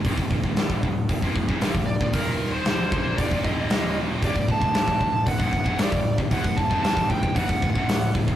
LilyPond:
<<
  \new Staff \with { instrumentName = "Lead electric guitar" } { \time 4/4 \tempo 4 = 115 r2. r8 d''8 | bes'8. c''8. c''8 d''8 ees''4 r8 | d''8 a''4. fis''4 d''8. r16 | fis''8 a''8 a''8 g''8 fis''4. r8 | }
  \new Staff \with { instrumentName = "Distorted electric guitar" } { \clef bass \time 4/4 <d, a,>16 <d, a,>16 <d, a,>16 <d, a,>16 <d, a,>16 <d, a,>16 <d, a,>8 <d, a,>16 <ees, bes,>16 <d, a,>16 <fis, cis>16 <g, d>16 <d, a,>8 <d, a,>16 | <ees, bes, ees>4 <d, a, d>8 <bes, f bes>8 <d, a,>16 <ees, bes,>16 <d, a, d>8 <ees, bes, ees>4 | <d, a,>16 <d, a,>16 <d, a,>16 <d, a,>16 <d, a,>16 <d, a,>16 <d, a,>8 <d, a,>16 <ees, bes,>16 <d, a,>16 <fis, cis>16 <g, d>16 <d, a,>8 <d, a,>16 | <d, a,>16 <d, a,>16 <d, a,>16 <ees, bes, ees>8 <d, a,>16 <d, a,>16 <d, a,>16 <fis, cis>16 <d, a,>16 <d, a,>16 <a, e>16 <d, a,>8 <d, a,>16 <d, a,>16 | }
  \new Staff \with { instrumentName = "Distorted electric guitar" } { \clef bass \time 4/4 <d, a,>16 <d, a,>16 <d, a,>16 <d, a,>16 <d, a,>16 <d, a,>16 <d, a,>8 <d, a,>16 <ees, bes,>16 <d, a,>16 <fis, cis>16 <g, d>16 <d, a,>8 <d, a,>16 | <ees, bes, ees>4 <d, a, d>8 <bes, f bes>8 <d, a,>16 <ees, bes,>16 <d, a, d>8 <ees, bes, ees>4 | <d, a,>16 <d, a,>16 <d, a,>16 <d, a,>16 <d, a,>16 <d, a,>16 <d, a,>8 <d, a,>16 <ees, bes,>16 <d, a,>16 <fis, cis>16 <g, d>16 <d, a,>8 <d, a,>16 | <d, a,>16 <d, a,>16 <d, a,>16 <ees, bes, ees>8 <d, a,>16 <d, a,>16 <d, a,>16 <fis, cis>16 <d, a,>16 <d, a,>16 <a, e>16 <d, a,>8 <d, a,>16 <d, a,>16 | }
  \new Staff \with { instrumentName = "Picked electric bass" } { \clef bass \time 4/4 d,,16 d,,16 d,,16 d,,16 d,,16 d,,16 d,,8 d,,16 ees,,16 d,,16 fis,,16 g,,16 d,,8 d,,16 | ees,,4 d,,8 bes,,8 d,,16 ees,,16 d,,8 ees,,4 | d,,16 d,,16 d,,16 d,,16 d,,16 d,,16 d,,8 d,,16 ees,,16 d,,16 fis,,16 g,,16 d,,8 d,,16 | d,,16 d,,16 d,,16 ees,,8 d,,16 d,,16 d,,16 fis,,16 d,,16 d,,16 a,,16 d,,8 d,,16 d,,16 | }
  \new DrumStaff \with { instrumentName = "Drums" } \drummode { \time 4/4 <hho bd>16 bd16 bd16 bd16 <hho sn>16 bd16 bd8 <hho bd>16 bd16 bd16 bd16 <hho sn>16 bd8 bd16 | <hho bd>4 <hho sn>8 bd8 <hho bd>16 bd16 bd8 <hho sn>4 | <hho bd>16 bd16 bd16 bd16 <hho sn>16 bd16 bd8 <hho bd>16 bd16 bd16 bd16 <hho sn>16 bd8 bd16 | <hho bd>16 bd16 bd16 bd16 <hho sn>16 bd16 bd16 bd16 <hho bd>16 bd16 bd16 bd16 <hho sn>8 bd16 bd16 | }
>>